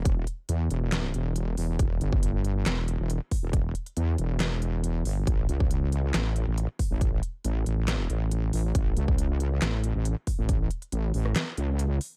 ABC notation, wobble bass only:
X:1
M:4/4
L:1/16
Q:1/4=138
K:Amix
V:1 name="Wobble bass" clef=bass
E,,,2 z2 E,,2 E,,,4 E,,,4 E,,,2 | E,,,2 G,,,6 E,,,3 E,,,2 z2 E,,,- | E,,,2 z2 E,,2 E,,,8 G,,,2 | A,,,2 C,,6 A,,,3 A,,,2 z2 A,,,- |
A,,,2 z2 A,,,2 A,,,4 A,,,4 A,,,2 | A,,,2 C,,6 A,,,3 A,,,2 z2 A,,,- | A,,,2 z2 A,,,2 A,,,2 z2 C,,4 z2 |]